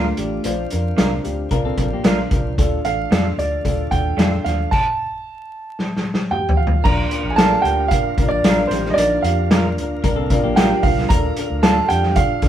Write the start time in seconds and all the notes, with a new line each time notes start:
Already playing: D2 D3 A3 D4 F4 A#4
0.17 A1 D4 F4 G4, closed hi-hat
0.44 A#1 C4 D4 F4 C5, closed hi-hat
0.70 F2 D4 F4 A#4, closed hi-hat
0.97 C2 A#3 D4 F4 A#4, snare, closed hi-hat
1.24 D2 D4 F4 G4, closed hi-hat
1.51 C2 D4 F4 A#4, kick, closed hi-hat
1.65 C4 A4
1.78 A#1 D4 F4 A#4, kick, closed hi-hat
1.93 A#3 G4
2.04 A#1 A3 A#3 D4 F4 A#4, snare, closed hi-hat
2.19 F3 D4
2.31 C2 D4 F4 A#4, kick, closed hi-hat
2.58 D2 D3 A3 D4 F4 A4, kick, closed hi-hat
2.85 A1 D4 F4 A4 F5, closed hi-hat
3.11 F2 A3 D4 F4 A4, snare, closed hi-hat
3.38 D2 D4 F4 A4 D5, closed hi-hat
3.64 D2 D4 F4 A4, kick, closed hi-hat
3.91 D#2 D4 F4 A4 G5, kick, closed hi-hat
4.17 F2 A3 D4 F4 A4, snare, closed hi-hat
4.44 D#2 D4 F4 A4 F5, snare, closed hi-hat
4.71 A5, kick, crash
5.79 snare
5.96 snare
6.14 snare
6.31 G4 G5, mid tom
6.49 floor tom
6.57 F4 F5
6.67 floor tom
6.82 A#1 D3 A#3 D4 F4 A#4 A#5, kick, crash
7.11 D4 F4 A#4, closed hi-hat
7.24 A#1
7.31 G#4 G#5
7.35 A#3 D4 A4 A5, snare, closed hi-hat
7.39 D4 F4 A#4
7.61 D2 G4 G5
7.65 D4 F4 A#4, closed hi-hat
7.87 F4 F5
7.91 D4 F4 A#4, kick, closed hi-hat
8.18 C2 D4 F4 A#4, kick, closed hi-hat
8.26 D4 D5
8.30 A#1
8.44 A#1 A#3 D4 F4 A#4, snare, closed hi-hat
8.66 C4 C5
8.70 A1 D4 G4, snare, closed hi-hat
8.85 snare
8.90 D4 D#4 D#5
8.94 A#1 D5
8.98 D4 F4 A#4, closed hi-hat
9.20 F2 F4 F5
9.24 D4 F4 G4, closed hi-hat
9.51 A#3 D4 F4 A#4, snare, closed hi-hat
9.78 D2 D4 F4 A#4, closed hi-hat
10.04 C2 D4 F4 A#4, kick, closed hi-hat
10.16 C4 A4
10.30 D4 F4 A#4, kick, closed hi-hat
10.43 A#1 A#3 G4
10.56 A3 A#3 D4 F4 G4 A#4 G5, snare, closed hi-hat
10.70 F3 D4
10.82 C2 D4 F4 A#4 F5, kick, open hi-hat
10.98 snare
11.09 D2 F3 D4 F4 A4 A#4 A#5, kick, closed hi-hat
11.37 D4 F4 A4, closed hi-hat
11.50 D2
11.62 A3 D4 F4 A4 A5, snare, closed hi-hat
11.87 D4 G4 G5, closed hi-hat
11.91 F2 F4 A4
12.03 snare
12.14 D4 F4 A4 F5, kick, closed hi-hat
12.42 D#2 D4 F4 A4, kick, closed hi-hat